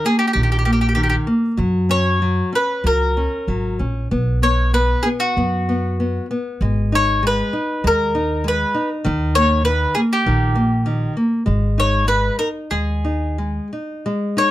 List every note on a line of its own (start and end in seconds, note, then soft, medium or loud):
0.05 0.35 A#3 soft
0.05 0.18 G#4 medium
0.19 0.26 G4 medium
0.28 0.32 G4 soft
0.33 1.15 A#1 medium
0.33 0.66 D#3 soft
0.33 0.41 G4 soft
0.43 0.49 G4 soft
0.52 0.57 G4 soft
0.59 0.64 G4 soft
0.65 0.96 A#3 soft
0.65 0.71 G4 soft
0.73 0.79 G4 soft
0.81 0.87 G4 soft
0.89 0.94 G4 soft
0.95 1.26 D#3 soft
0.95 1.01 G4 soft
1.03 1.08 G4 soft
1.10 1.15 G4 soft
1.27 1.57 A#3 soft
1.57 2.40 F#2 medium
1.57 2.21 F#3 medium
1.89 2.20 C#4 soft
1.89 2.49 C#5 medium
2.22 2.52 F#3 soft
2.53 2.83 C#4 soft
2.53 2.86 B4 medium
2.84 3.25 C#2 medium
2.84 3.15 F#3 soft
2.84 3.77 A#4 medium
3.17 3.47 C#4 soft
3.48 3.77 G#1 medium
3.48 3.79 F#3 soft
3.79 4.08 A#1 medium
3.79 4.10 C#4 soft
4.11 4.93 B1 medium
4.11 4.41 B3 medium
4.42 4.72 B3 soft
4.42 4.74 C#5 medium
4.73 5.04 B3 soft
4.73 5.03 B4 medium
5.03 5.36 B3 soft
5.03 5.08 G#4 medium
5.20 6.25 F#4 medium
5.37 6.17 F#2 medium
5.37 5.67 B3 soft
5.69 5.98 B3 soft
6.00 6.29 B3 soft
6.31 6.60 B3 soft
6.61 7.41 G#1 medium
6.61 7.22 G#3 medium
6.92 7.22 D#4 soft
6.92 7.25 C#5 medium
7.23 7.52 G#3 medium
7.23 7.87 B4 medium
7.53 7.83 D#4 soft
7.84 8.63 D#2 medium
7.84 8.13 G#3 soft
7.84 8.47 A#4 medium
8.15 8.43 D#4 soft
8.44 8.73 G#3 medium
8.48 8.88 B4 medium
8.74 9.04 D#4 medium
9.04 9.85 D#2 medium
9.04 9.63 D#3 medium
9.35 9.65 A#3 soft
9.35 9.64 C#5 medium
9.64 9.94 D#3 soft
9.64 9.93 B4 medium
9.95 10.25 A#3 soft
9.95 10.00 G#4 medium
10.13 11.13 G4 medium
10.26 11.05 A#1 medium
10.26 10.55 D#3 soft
10.55 10.85 A#3 soft
10.86 11.15 D#3 soft
11.17 11.45 A#3 soft
11.46 12.28 G#1 medium
11.46 12.06 G#3 medium
11.78 12.07 D#4 soft
11.78 12.08 C#5 medium
12.07 12.37 G#3 soft
12.07 12.38 B4 medium
12.39 12.70 D#4 soft
12.39 12.47 A#4 medium
12.71 13.58 D#2 medium
12.71 13.03 G#3 soft
12.71 13.67 G#4 medium
13.05 13.37 D#4 soft
13.38 13.71 G#3 soft
13.73 14.04 D#4 soft
14.06 14.51 G#3 medium
14.37 14.51 D#4 soft
14.37 14.51 C#5 medium